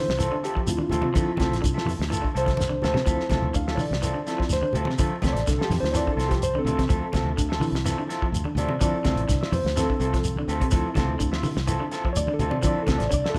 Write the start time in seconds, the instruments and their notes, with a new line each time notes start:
Already playing: clean electric guitar E3, reed electric piano F3 C4 E4 C5
0.08 fingered electric bass C2, snare
0.19 clean electric guitar E3 C4 F4 A4 E5, closed hi-hat, shekere
0.32 clean electric guitar D3
0.43 clean electric guitar C4 F4 A4 E5, reed electric piano G4, closed hi-hat, shekere
0.55 clean electric guitar F3, kick
0.67 fingered electric bass D2, reed electric piano F3 C4 E4 F4, closed hi-hat, shekere
0.78 clean electric guitar D3, high conga
0.89 fingered electric bass D2, clean electric guitar C4 F4 A4 E5, reed electric piano F4, closed hi-hat, high conga, low conga, shekere
1.02 clean electric guitar C3, high conga
1.14 fingered electric bass D3, clean electric guitar F3 C4 F4 A4 E5, reed electric piano F3 C4 E4, kick, closed hi-hat, shekere
1.28 muted fingered electric bass stroke
1.37 fingered electric bass D2, clean electric guitar C3 C4 F4 A4 E5, kick, snare, closed hi-hat, high conga
1.42 shekere
1.52 fingered electric bass A1, snare, closed hi-hat
1.62 fingered electric bass C2, clean electric guitar D3, kick, closed hi-hat, shekere
1.74 clean electric guitar F4 A4 E5, snare
1.86 fingered electric bass F2, clean electric guitar E3, open hi-hat, high conga, low conga, shekere
1.99 fingered electric bass D2, snare
2.10 clean electric guitar E3 F4 A4 E5, muted clean electric guitar stroke, closed hi-hat, shekere
2.22 clean electric guitar D3, kick
2.34 fingered electric bass C2, clean electric guitar C4 F4 A4 E5, reed electric piano C5, closed hi-hat, shekere
2.46 clean electric guitar F3, kick, snare, closed hi-hat, high conga
2.57 snare, high conga, shekere
2.69 clean electric guitar D3, high conga
2.82 fingered electric bass D2, clean electric guitar C4 F4 A4 E5, reed electric piano C5, snare, low conga, shekere
2.94 clean electric guitar C3, snare, low conga
3.06 fingered electric bass D2, clean electric guitar F3 C4 F4 A4 E5, reed electric piano F3 C4 E4, kick, closed hi-hat, shekere
3.20 snare
3.30 fingered electric bass D2, clean electric guitar C3 F4 A4 E5, kick, snare, closed hi-hat, high conga, shekere
3.42 fingered electric bass D2, high conga, low conga
3.54 fingered electric bass D2, clean electric guitar D3, reed electric piano F5, kick, closed hi-hat, shekere
3.67 clean electric guitar F4 A4 E5, snare
3.75 fingered electric bass D3, clean electric guitar E3, reed electric piano C#5, open hi-hat, high conga, low conga, shekere
3.80 reed electric piano D5
3.91 fingered electric bass C2, snare
4.02 clean electric guitar E3 C4 F4 A4 E5, closed hi-hat, shekere
4.14 clean electric guitar D3
4.26 reed electric piano F3 C4 E4, clean electric guitar C4 F4 A4 E5, snare, closed hi-hat, shekere
4.38 clean electric guitar F3, kick, snare
4.50 fingered electric bass D2, reed electric piano C5, snare, closed hi-hat, shekere
4.62 clean electric guitar D3, high conga
4.73 fingered electric bass D2, clean electric guitar C4 F4 A4 E5, closed hi-hat, low conga, shekere
4.85 clean electric guitar C3, high conga
4.90 snare
4.98 fingered electric bass D3, clean electric guitar F3 C4 F4 A4 E5, kick, closed hi-hat, shekere
5.10 muted fingered electric bass stroke
5.21 fingered electric bass D2, clean electric guitar C3 C4 F4 A4 E5, kick, snare, closed hi-hat, high conga, shekere
5.28 reed electric piano C#5
5.33 fingered electric bass A1, reed electric piano D5, closed hi-hat
5.38 snare
5.47 fingered electric bass C2, clean electric guitar D3, reed electric piano A4, kick, snare, closed hi-hat, shekere
5.58 clean electric guitar F4 A4, muted clean electric guitar stroke, snare
5.64 reed electric piano G4
5.70 fingered electric bass F2, clean electric guitar E3, reed electric piano F3 C4 E4, snare, open hi-hat, high conga, low conga, shekere
5.80 fingered electric bass D2, reed electric piano C5, snare
5.92 clean electric guitar E3 C4 F4 A4 E5, reed electric piano C#5, closed hi-hat, shekere
5.96 reed electric piano D5, snare
6.07 clean electric guitar D3, kick
6.12 reed electric piano A4
6.17 fingered electric bass C2, clean electric guitar C4 F4 A4 E5, closed hi-hat, shekere
6.21 snare
6.29 clean electric guitar F3, reed electric piano G4, kick, snare, closed hi-hat
6.42 reed electric piano C5, closed hi-hat, shekere
6.55 clean electric guitar D3, high conga
6.59 reed electric piano C4 A4
6.65 fingered electric bass D2, clean electric guitar C4 F4 A4 E5, closed hi-hat, high conga, low conga, shekere
6.78 clean electric guitar C3, kick, snare, closed hi-hat, high conga
6.88 fingered electric bass D2, clean electric guitar F3 C4 F4 A4 E5, kick, closed hi-hat, shekere
7.13 fingered electric bass D2, clean electric guitar C3 C4 F4 A4 E5, kick, snare, closed hi-hat, high conga, shekere
7.24 fingered electric bass D2, high conga
7.37 fingered electric bass D2, clean electric guitar D3, kick, closed hi-hat, shekere
7.49 clean electric guitar F4 A4 E5, snare
7.60 fingered electric bass D3, clean electric guitar E3, reed electric piano F3 C4 E4, open hi-hat, high conga, low conga, shekere
7.72 fingered electric bass C2, snare
7.85 clean electric guitar E3 C4 F4 A4 E5, snare, closed hi-hat, shekere
7.98 clean electric guitar D3
8.08 clean electric guitar C4 F4 A4 E5, snare, closed hi-hat, shekere
8.22 clean electric guitar F3, kick
8.32 fingered electric bass D2, closed hi-hat, shekere
8.45 clean electric guitar D3, high conga
8.55 fingered electric bass D2, clean electric guitar C4 F4 A4 E5, reed electric piano D5, closed hi-hat, low conga, shekere
8.68 clean electric guitar C3, high conga
8.80 fingered electric bass D3, reed electric piano F3 C4 E4 D5, clean electric guitar F3 C4 F4 A4 E5, kick, closed hi-hat, shekere
8.93 muted fingered electric bass stroke
9.04 fingered electric bass D2, clean electric guitar C3 C4 F4 A4 E5, kick, snare, closed hi-hat, high conga, shekere
9.16 fingered electric bass A1, closed hi-hat
9.29 fingered electric bass C2, clean electric guitar D3, kick, snare, closed hi-hat, shekere
9.41 clean electric guitar F4 E5, snare
9.52 fingered electric bass F2, clean electric guitar E3, reed electric piano C5, open hi-hat, high conga, low conga, shekere
9.64 fingered electric bass D2, snare
9.76 clean electric guitar E3 C4 F4 A4 E5, reed electric piano C4 A4, snare, closed hi-hat, shekere
9.90 clean electric guitar D3, kick
9.99 fingered electric bass C2, clean electric guitar C4 F4 A4 E5, closed hi-hat, shekere
10.14 clean electric guitar F3, kick, snare, closed hi-hat
10.24 closed hi-hat, shekere
10.36 clean electric guitar D3, high conga
10.48 fingered electric bass D2, clean electric guitar C4 F4 A4 E5, closed hi-hat, shekere
10.60 clean electric guitar C3, kick, closed hi-hat, low conga
10.71 fingered electric bass D2, clean electric guitar F3 C4 F4 A4 E5, reed electric piano F3 C4 E4, kick, closed hi-hat, shekere
10.95 fingered electric bass D2, clean electric guitar C3 C4 F4 A4 E5, kick, snare, closed hi-hat, high conga, shekere
11.08 fingered electric bass D2
11.19 fingered electric bass D2, clean electric guitar D3, kick, closed hi-hat, shekere
11.32 clean electric guitar F4 E5, muted clean electric guitar stroke, snare
11.43 fingered electric bass D3, clean electric guitar E3, open hi-hat, high conga, low conga, shekere
11.57 fingered electric bass C2, snare
11.67 clean electric guitar E3 C4 F4 A4 E5, closed hi-hat, shekere
11.80 clean electric guitar D3
11.91 clean electric guitar C4 F4 A4 E5, snare, closed hi-hat, shekere
12.05 clean electric guitar F3, kick
12.13 reed electric piano C#5, closed hi-hat, shekere
12.17 fingered electric bass D2, reed electric piano D5
12.27 clean electric guitar D3, high conga
12.34 reed electric piano A4
12.39 fingered electric bass D2, clean electric guitar C4 F4 A4 E5, closed hi-hat, low conga, shekere
12.50 clean electric guitar C3, reed electric piano D5, high conga
12.63 fingered electric bass D3, clean electric guitar F3 C4 F4 A4 E5, reed electric piano F3 C4 E4 D5, kick, closed hi-hat, shekere
12.76 muted fingered electric bass stroke
12.83 reed electric piano A4, high conga
12.87 fingered electric bass D2, clean electric guitar C3 C4 F4 A4 E5, kick, snare, closed hi-hat, shekere
12.98 fingered electric bass A1, reed electric piano D5, snare, closed hi-hat
13.09 fingered electric bass C2, clean electric guitar D3, reed electric piano C#5, kick, closed hi-hat, shekere
13.14 reed electric piano D5
13.24 clean electric guitar F4 A4 E5, snare
13.30 reed electric piano A4
13.35 fingered electric bass F2, reed electric piano F3, muted clean electric guitar stroke, high conga, low conga